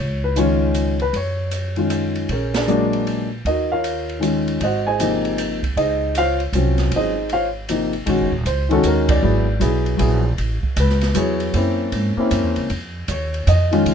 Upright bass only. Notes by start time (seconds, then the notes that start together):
0.00 C#2
1.13 F#2
2.29 A#1
3.45 D#2
4.60 G#1
5.77 C#2
6.52 C2
6.91 G#1
8.07 A#1
8.20 F#1
8.32 D#1
8.45 C#2
8.84 D#2
9.22 G#1
9.61 B1
10.00 A#1
10.38 A1
10.63 muted upright bass stroke
10.77 C#2
11.15 E2
11.54 F#2
11.92 G#2
12.17 muted upright bass stroke
12.31 F#2
12.43 E2
12.57 C#2
12.70 F2
13.08 D#2
13.47 F2
13.86 C#2